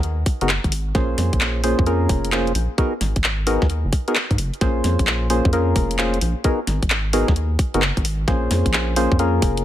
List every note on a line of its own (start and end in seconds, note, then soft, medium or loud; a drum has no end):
0.00 0.24 D#2 loud
0.00 closed hi-hat medium
0.26 kick loud
0.26 open hi-hat medium
0.41 0.59 F#1 medium
0.41 0.49 B3 medium
0.41 0.49 D#4 medium
0.41 0.49 F#4 medium
0.41 0.49 G#4 medium
0.41 0.49 A#4 medium
0.41 closed hi-hat medium
0.49 clap loud
0.64 0.93 G#1 loud
0.64 kick medium
0.64 closed hi-hat soft
0.72 open hi-hat loud
0.95 1.15 A#1 medium
0.95 1.62 A#3 medium
0.95 1.62 C#4 medium
0.95 1.62 F4 medium
0.95 1.62 G#4 medium
0.95 1.62 C5 medium
0.95 kick loud
0.95 snare soft
0.95 closed hi-hat medium
1.18 1.31 F2 medium
1.18 snare soft
1.18 open hi-hat loud
1.33 1.75 A#1 medium
1.33 kick medium
1.33 closed hi-hat medium
1.41 clap loud
1.64 1.85 A#3 medium
1.64 1.85 C#4 medium
1.64 1.85 F4 medium
1.64 1.85 G#4 medium
1.64 1.85 C5 loud
1.64 open hi-hat loud
1.79 2.07 F2 loud
1.79 kick loud
1.86 2.31 A#3 medium
1.86 2.30 C#4 medium
1.86 2.31 F4 medium
1.86 2.30 G#4 medium
1.86 2.31 A#4 loud
1.86 closed hi-hat medium
2.09 2.53 F1 medium
2.09 kick loud
2.09 open hi-hat loud
2.25 closed hi-hat medium
2.32 2.52 A#3 medium
2.32 2.52 C#4 medium
2.32 2.52 F4 medium
2.32 2.52 G#4 medium
2.32 2.52 C5 medium
2.32 clap loud
2.47 closed hi-hat soft
2.55 2.68 A#1 loud
2.55 open hi-hat loud
2.78 2.93 B3 medium
2.78 2.93 D#4 medium
2.78 2.93 F#4 medium
2.78 2.93 G#4 medium
2.78 2.93 A#4 loud
2.78 kick loud
2.78 closed hi-hat medium
3.01 3.14 G#1 medium
3.01 snare soft
3.01 open hi-hat loud
3.16 3.58 G#1 medium
3.16 kick medium
3.16 closed hi-hat medium
3.24 clap loud
3.47 3.67 B3 medium
3.47 3.67 D#4 medium
3.47 3.67 F#4 medium
3.47 3.67 G#4 medium
3.47 3.67 A#4 loud
3.47 open hi-hat loud
3.62 3.84 D#2 loud
3.62 kick loud
3.62 snare soft
3.70 closed hi-hat medium
3.85 3.91 F#1 loud
3.93 kick loud
3.93 open hi-hat medium
4.08 4.16 B3 medium
4.08 4.16 D#4 medium
4.08 4.16 F#4 medium
4.08 4.16 G#4 medium
4.08 4.16 A#4 medium
4.08 closed hi-hat medium
4.15 clap loud
4.31 4.37 G#2 loud
4.31 kick medium
4.31 closed hi-hat soft
4.38 4.51 F#1 medium
4.38 open hi-hat loud
4.54 closed hi-hat soft
4.61 4.82 A#1 loud
4.61 5.28 A#3 medium
4.61 5.28 C#4 medium
4.61 5.28 F4 medium
4.61 5.28 G#4 medium
4.61 5.28 C5 medium
4.61 kick loud
4.61 snare soft
4.61 closed hi-hat medium
4.84 4.97 F2 medium
4.84 snare soft
4.84 open hi-hat loud
4.99 5.41 A#1 medium
4.99 kick medium
4.99 closed hi-hat medium
5.07 clap loud
5.30 5.51 A#3 medium
5.30 5.51 C#4 medium
5.30 5.51 F4 medium
5.30 5.51 G#4 medium
5.30 5.51 C5 medium
5.30 open hi-hat loud
5.45 5.74 F2 loud
5.45 kick loud
5.53 5.97 A#3 medium
5.53 5.97 C#4 medium
5.53 5.97 F4 medium
5.53 5.97 G#4 medium
5.53 5.97 A#4 loud
5.53 closed hi-hat medium
5.76 6.20 F1 medium
5.76 kick loud
5.76 open hi-hat medium
5.91 closed hi-hat medium
5.99 6.19 A#3 medium
5.99 6.19 C#4 medium
5.99 6.19 F4 medium
5.99 6.19 G#4 medium
5.99 6.19 C5 loud
5.99 clap loud
6.14 closed hi-hat medium
6.21 6.34 A#1 loud
6.21 open hi-hat loud
6.44 6.60 B3 medium
6.44 6.60 D#4 medium
6.44 6.60 F#4 medium
6.44 6.60 G#4 medium
6.44 6.60 A#4 loud
6.44 kick loud
6.44 closed hi-hat medium
6.67 6.80 G#1 medium
6.67 snare soft
6.67 open hi-hat loud
6.83 7.24 G#1 medium
6.83 kick medium
6.83 closed hi-hat medium
6.90 clap loud
7.13 7.33 B3 medium
7.13 7.33 D#4 medium
7.13 7.33 F#4 medium
7.13 7.33 G#4 medium
7.13 7.33 A#4 loud
7.13 open hi-hat loud
7.28 7.57 D#2 loud
7.28 kick loud
7.28 snare soft
7.36 closed hi-hat medium
7.59 kick loud
7.59 open hi-hat medium
7.74 7.92 F#1 loud
7.74 7.82 B3 medium
7.74 7.82 D#4 medium
7.74 7.82 F#4 medium
7.74 7.82 G#4 medium
7.74 7.82 A#4 medium
7.74 closed hi-hat medium
7.82 clap loud
7.97 8.26 G#1 medium
7.97 kick medium
7.97 closed hi-hat medium
8.05 open hi-hat loud
8.28 8.48 A#1 medium
8.28 8.95 A#3 medium
8.28 8.95 C#4 medium
8.28 8.95 F4 medium
8.28 8.95 G#4 medium
8.28 8.95 C5 medium
8.28 kick loud
8.28 snare soft
8.28 closed hi-hat medium
8.51 8.63 F2 medium
8.51 snare soft
8.51 open hi-hat loud
8.66 9.08 A#1 medium
8.66 kick medium
8.66 closed hi-hat medium
8.73 clap loud
8.96 9.18 A#3 medium
8.96 9.18 C#4 medium
8.96 9.18 F4 medium
8.96 9.18 G#4 medium
8.96 9.18 C5 medium
8.96 open hi-hat loud
9.12 9.40 F2 loud
9.12 kick loud
9.19 9.63 A#3 medium
9.19 9.63 C#4 medium
9.19 9.63 F4 medium
9.19 9.63 G#4 medium
9.19 9.63 A#4 loud
9.19 closed hi-hat medium
9.42 9.64 F1 medium
9.42 kick loud
9.42 open hi-hat loud
9.57 closed hi-hat medium